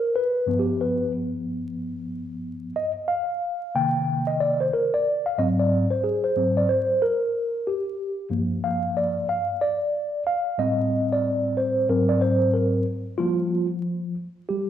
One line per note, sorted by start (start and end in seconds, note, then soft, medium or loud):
0.00 0.14 A#4 medium
0.16 0.60 B4 loud
0.46 2.72 G2 medium
0.46 2.72 F3 soft
0.46 2.72 B3 medium
0.59 0.79 G4 medium
0.81 1.11 B4 medium
2.76 2.91 D#5 loud
3.08 3.76 F5 loud
3.75 4.69 C3 soft
3.75 4.69 D#3 soft
3.75 4.69 A#3 medium
3.75 4.29 G5 medium
4.27 4.40 D#5 medium
4.40 4.61 D5 loud
4.60 4.73 C5 medium
4.73 4.94 A#4 medium
4.94 5.27 D5 medium
5.26 5.38 F5 medium
5.38 5.84 G#2 medium
5.38 5.84 F#3 medium
5.38 5.85 C4 medium
5.38 5.47 D#5 loud
5.59 5.92 D5 medium
5.90 6.03 C5 medium
6.04 6.24 G#4 medium
6.24 6.57 C5 medium
6.36 6.65 G#2 soft
6.36 6.65 F#3 soft
6.36 6.66 C4 soft
6.57 6.69 D5 medium
6.69 7.02 C5 medium
7.02 7.68 A#4 medium
7.67 8.28 G4 medium
8.30 9.24 G2 medium
8.30 9.25 F3 medium
8.30 9.25 A#3 medium
8.64 8.97 F5 medium
8.97 9.27 D5 medium
9.29 9.63 F5 loud
9.61 10.23 D5 loud
10.27 10.60 F5 loud
10.58 11.85 A2 medium
10.58 11.85 G3 medium
10.58 11.86 C4 medium
10.58 11.13 D#5 loud
11.13 11.59 D5 medium
11.57 11.87 C5 medium
11.89 12.83 G#2 medium
11.89 12.83 F#3 soft
11.89 12.84 C4 medium
11.89 12.10 A#4 medium
12.09 12.21 D5 loud
12.21 12.55 C5 loud
12.54 12.85 A#4 medium
13.18 14.14 F3 medium
13.18 13.66 G3 medium
13.18 13.66 A#3 soft
13.18 13.20 F4 loud
13.18 13.66 F4 medium
14.49 14.70 G3 medium
14.49 14.70 G4 medium